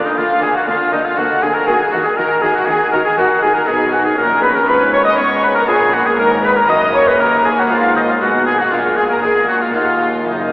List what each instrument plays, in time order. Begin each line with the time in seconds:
Already playing: harpsichord D3 G#3 A#3 F4
0.03 oboe D#4, violin section D#4 D#5
0.15 double bass section D2, cello section D3, harpsichord D3, viola section A#3, violin section F4 F5, oboe F4
0.41 double bass section D2, cello section D3, harpsichord D3, viola section A#3, violin section G#4 G#5, oboe G#4
0.55 violin section F#4 F#5, oboe F#4
0.67 double bass section D2, cello section D3, harpsichord D3, viola section A#3, violin section F4 F5, oboe F4
0.92 double bass section D2, cello section D3, harpsichord D3, viola section A#3, violin section D#4 D#5, oboe D#4
1.04 violin section F4 F5, oboe F4
1.17 double bass section D2, cello section D3, harpsichord D3, viola section A#3, violin section F#4 F#5, oboe F#4
1.42 double bass section D2, cello section D3, harpsichord D3, viola section A#3, violin section G#4 G#5, oboe G#4
1.54 oboe A#4, violin section A#4 A#5
1.64 double bass section D#2, cello section D#3, harpsichord D#3 A#3 D#4, viola section F#4, oboe G#4, violin section G#4 G#5
1.92 double bass section D#2, cello section D#3, harpsichord D#3, viola section F#4, oboe F#4, violin section F#4 F#5
2.04 oboe G#4, violin section G#4 G#5
2.17 double bass section D#2, cello section D#3, harpsichord D#3, viola section F#4, oboe A#4, violin section A#4 A#5
2.42 double bass section D#2, harpsichord D#3, cello section D#3, viola section F#4, oboe G#4, violin section G#4 G#5
2.54 oboe F#4, violin section F#4 F#5
2.66 double bass section D#2, cello section D#3, harpsichord D#3, viola section F#4, oboe G#4, violin section G#4 G#5
2.92 double bass section D#2, harpsichord D#3, cello section D#3, viola section F#4, oboe A#4, violin section A#4 A#5
3.05 oboe G#4, violin section G#4 G#5
3.17 double bass section D#2, harpsichord D#3, cello section D#3, viola section F#4, oboe F#4, violin section F#4 F#5
3.42 double bass section D#2, cello section D#3, harpsichord D#3, viola section F#4, oboe G#4, violin section G#4 G#5
3.55 oboe A#4, violin section A#4 A#5
3.65 double bass section B1, harpsichord B2 B3 D#4, cello section B2, viola section D#4, oboe G#4, violin section G#4 G#5
3.92 oboe F#4, violin section F#4 F#5
4.05 oboe G#4, violin section G#4 G#5
4.17 double bass section A#1, cello section A#2, harpsichord A#2, viola section C#4, oboe A#4, violin section A#4 A#5
4.42 oboe B4, violin section B4 B5
4.55 oboe A#4, violin section A#4 A#5
4.65 double bass section G#1, cello section G#2, harpsichord G#2 B3 F4, oboe B4, violin section B4 B5
4.92 oboe C#5, violin section C#5 C#6
5.05 oboe D#5, violin section D#5 D#6
5.17 double bass section G#2, cello section G#3, harpsichord G#3, viola section B3, oboe C#5, violin section C#5 C#6
5.43 oboe B4, violin section B4 B5
5.55 oboe A#4, violin section A#4 A#5
5.64 cello section A#2, harpsichord A#3 D4 F4, viola section A#3, violin section G#4
5.68 double bass section A#1, harpsichord A#2, oboe G#4, violin section G#5
5.93 violin section F#4 F#5, oboe F#4
6.06 violin section G#4 G#5, oboe G#4
6.18 double bass section G#1, cello section G#2, harpsichord G#2, violin section A#4 A#5, oboe A#4
6.43 violin section B4 B5, oboe B4
6.56 violin section A#4 A#5, oboe A#4
6.65 harpsichord A#3 D#4 F#4, viola section A#3
6.69 double bass section F#1, cello section F#2, harpsichord F#2, violin section D#5 D#6, oboe D#5
6.94 violin section C#5 C#6, oboe C#5
7.07 violin section B4 B5, oboe B4
7.19 cello section D#2, harpsichord D#2, double bass section D#2, violin section A#4 A#5, oboe A#4
7.44 violin section G#4 G#5, oboe G#4
7.57 violin section F#4 F#5, oboe F#4
7.67 double bass section G#1, cello section G#2, harpsichord G#3 B3 F4, violin section F4 F5
7.71 harpsichord G#2, oboe F4
7.95 violin section D#4 D#5, oboe D#4
8.07 violin section F4 F5, oboe F4
8.21 double bass section B1, cello section B2, harpsichord B2, viola section G#3, violin section F#4 F#5, oboe F#4
8.46 oboe G#4, violin section G#4 G#5
8.59 violin section F#4 F#5, oboe F#4
8.68 harpsichord G#3 A#3 D4, oboe F4, violin section F4
8.72 double bass section A#1, harpsichord A#2, cello section A#2, viola section G#3, violin section F5
8.97 violin section G#4 G#5, oboe G#4
9.09 oboe A#4, violin section A#4 A#5
9.22 double bass section A#2, harpsichord A#3, cello section A#3, oboe G#4, violin section G#4 G#5
9.48 oboe F#4, violin section F#4 F#5
9.61 violin section F4 F5, oboe F4
9.72 harpsichord D#2 A#3 D#4, double bass section D#2, cello section D#2, viola section A#3, violin section F4 F5, oboe F4
10.27 double bass section F#1, harpsichord F#2, cello section F#2, violin section D#4 D#5, oboe D#4